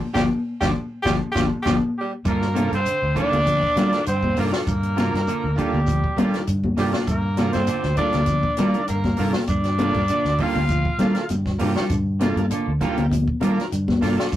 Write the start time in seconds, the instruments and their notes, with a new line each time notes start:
0.13 fingered electric bass G1, clean electric guitar D3 F3 G3 D4 F4 G4, transistor combo organ D4 F4 G4, tenor saxophone G4, kick, snare, high conga, shekere
0.61 fingered electric bass G1, clean electric guitar D3 F3 G3 D4 F4 G4, transistor combo organ D4 F4 G4, tenor saxophone G4, kick, snare, high conga, shekere
1.02 fingered electric bass G1, transistor combo organ D4 F4 G4, clean electric guitar D4 F4 G4, tenor saxophone G4, kick, snare, high conga
1.07 clean electric guitar D3 F3 G3, shekere
1.32 fingered electric bass G1, transistor combo organ D4 F4 G4, clean electric guitar D4 F4 G4, tenor saxophone G4, kick, snare
1.36 clean electric guitar D3 F3 G3, high conga, shekere
1.62 fingered electric bass G1, transistor combo organ D4 F4 G4, clean electric guitar D4 F4 G4, tenor saxophone G4, kick, snare, high conga
1.66 clean electric guitar D3 F3 G3, shekere
1.98 tenor saxophone G3, trumpet G4
2.25 fingered electric bass G2, clean electric guitar D3 A#3 D4 F4 A4, trumpet A#4, kick, closed hi-hat, shekere
2.30 tenor saxophone A#3
2.42 snare
2.54 clean electric guitar C3 A#3 D4 F4 A4, transistor combo organ A#3 F4 A4, closed hi-hat, high conga, shekere
2.72 fingered electric bass G2, tenor saxophone C4, trumpet C5, closed hi-hat
2.86 clean electric guitar D3, closed hi-hat, shekere
3.02 fingered electric bass D2
3.15 clean electric guitar D3 A#3 D4 F4 A4, transistor combo organ A#3 F4 A4, tenor saxophone D4, trumpet D5, kick, closed hi-hat, low conga, shekere
3.32 fingered electric bass D2, closed hi-hat, high conga
3.45 clean electric guitar F3, kick, closed hi-hat, high conga, shekere
3.62 kick
3.75 clean electric guitar D#3 A#3 D4 F4 A4, fingered electric bass G3, transistor combo organ A#3 F4 A4, snare, closed hi-hat, high conga, shekere
3.93 snare, closed hi-hat, low conga
4.05 fingered electric bass G2, clean electric guitar D3, tenor saxophone C4, trumpet C5, closed hi-hat, shekere
4.23 kick, high conga
4.36 fingered electric bass G2, clean electric guitar C3 A#3 D4 F4 A4, transistor combo organ A#3 F4 A4, tenor saxophone A#3, trumpet A#4, open hi-hat, low conga, shekere
4.53 clean electric guitar D4 F4 A4, snare
4.67 fingered electric bass G2, clean electric guitar D3, tenor saxophone A#3, trumpet A#4, kick, closed hi-hat, shekere
4.83 closed hi-hat
4.95 clean electric guitar C3 A#3 D4 F4 A4, transistor combo organ A#3 F4 A#4, snare, closed hi-hat, high conga, shekere
5.14 fingered electric bass G2, snare, closed hi-hat
5.27 clean electric guitar D3 A#3 D4 F4 A4, closed hi-hat, shekere
5.44 fingered electric bass D2
5.55 clean electric guitar D3 A#3 D4 F4 A4, transistor combo organ A#3 F4 A4, trumpet G4, kick, closed hi-hat, low conga, shekere
5.60 tenor saxophone G3
5.73 fingered electric bass D2, high conga
5.87 clean electric guitar F3, kick, closed hi-hat, shekere
6.04 kick
6.16 clean electric guitar D#3 A#3 D4 F4 A4, fingered electric bass G3, transistor combo organ A#3 F4 A4, closed hi-hat, high conga, shekere
6.34 snare, closed hi-hat, low conga
6.47 fingered electric bass G2, clean electric guitar D3, closed hi-hat, shekere
6.64 kick, high conga
6.76 fingered electric bass G2, clean electric guitar C3 A#3 D4 F4 A4, tenor saxophone G3, transistor combo organ A#3 F4 A4, trumpet G4, snare, open hi-hat, low conga, shekere
6.93 clean electric guitar D4 F4 A4, snare, closed hi-hat, high conga
7.07 fingered electric bass G2, clean electric guitar D3, tenor saxophone A#3, trumpet A#4, kick, closed hi-hat, shekere
7.36 clean electric guitar C3 A#3 D4 F4 A4, transistor combo organ A#3 F4 A4, snare, closed hi-hat, high conga, shekere
7.53 fingered electric bass G2, tenor saxophone C4, trumpet C5, snare, closed hi-hat, high conga
7.67 clean electric guitar D3 A#3 D4 F4 A4, closed hi-hat, shekere
7.83 fingered electric bass D2, snare
7.97 clean electric guitar D3 A#3 D4 F4 A4, transistor combo organ A#3 F4 A4, tenor saxophone D4, trumpet D5, kick, closed hi-hat, low conga, shekere
8.13 fingered electric bass D2, snare, closed hi-hat, high conga
8.26 clean electric guitar F3, kick, closed hi-hat, high conga, shekere
8.43 kick
8.57 clean electric guitar D#3 A#3 D4 F4 A4, fingered electric bass G3, transistor combo organ A#3 F4 A#4, snare, closed hi-hat, high conga, shekere
8.74 closed hi-hat, low conga
8.88 fingered electric bass G2, clean electric guitar D3, tenor saxophone A#3, trumpet A#4, closed hi-hat, shekere
9.04 kick, snare, high conga
9.17 fingered electric bass G2, clean electric guitar C3 A#3 D4 F4 A4, transistor combo organ A#3 F4 A4, tenor saxophone A#3, trumpet A#4, open hi-hat, low conga, shekere
9.33 snare, high conga
9.47 fingered electric bass G2, clean electric guitar D3, tenor saxophone D4, trumpet D5, kick, closed hi-hat, shekere
9.64 snare, closed hi-hat
9.78 clean electric guitar C3 A#3 D4 F4 A4, transistor combo organ A#3 F4 A4, closed hi-hat, high conga, shekere
9.94 fingered electric bass G2, kick, closed hi-hat
10.08 clean electric guitar D3 A#3 D4 F4 A4, closed hi-hat, shekere
10.25 fingered electric bass D2, snare
10.38 clean electric guitar D3 A#3 D4 F4 A4, transistor combo organ A#3 F4 G4, trumpet F5, kick, open hi-hat, low conga, shekere
10.43 tenor saxophone F4
10.55 fingered electric bass D2, high conga
10.69 clean electric guitar F3, kick, closed hi-hat, shekere
10.85 kick
10.98 clean electric guitar D#3 A#3 D4 F4 A4, fingered electric bass G3, transistor combo organ A#3 F4 A4, snare, closed hi-hat, high conga, shekere
11.15 snare, closed hi-hat
11.29 fingered electric bass G2, clean electric guitar D3, closed hi-hat, high conga, shekere
11.46 kick, snare
11.58 fingered electric bass G2, clean electric guitar C3 A#3 D4 F4 A4, transistor combo organ A#3 F4 G4, open hi-hat, low conga, shekere
11.76 clean electric guitar D4 F4 A4, snare, closed hi-hat, low conga
11.90 fingered electric bass G2, clean electric guitar D3, kick, closed hi-hat, shekere
12.20 clean electric guitar C3 A#3 D4 F4 A4, transistor combo organ A#3 F4 A4, snare, closed hi-hat, high conga, shekere
12.36 fingered electric bass G2, closed hi-hat, high conga
12.50 clean electric guitar D3 A#3 D4 F4 A4, closed hi-hat, shekere
12.67 fingered electric bass D2
12.80 clean electric guitar D3 A#3 D4 F4 A4, transistor combo organ A#3 F4 G4, kick, closed hi-hat, low conga, shekere
12.97 fingered electric bass D2, closed hi-hat, high conga
13.12 clean electric guitar F3, kick, closed hi-hat, high conga, shekere
13.28 kick
13.40 clean electric guitar D#3 A#3 D4 F4 A4, fingered electric bass G3, transistor combo organ A#3 F4 A#4, closed hi-hat, high conga, shekere
13.58 snare, closed hi-hat, low conga
13.72 fingered electric bass G2, clean electric guitar D3, closed hi-hat, shekere
13.88 kick, snare, high conga
14.01 fingered electric bass G2, clean electric guitar C3 A#3 D4 F4 A4, transistor combo organ A#3 F4 A4, snare, open hi-hat, low conga, shekere
14.18 clean electric guitar D4 F4 A4, snare
14.32 fingered electric bass G2, clean electric guitar D3, kick, closed hi-hat, shekere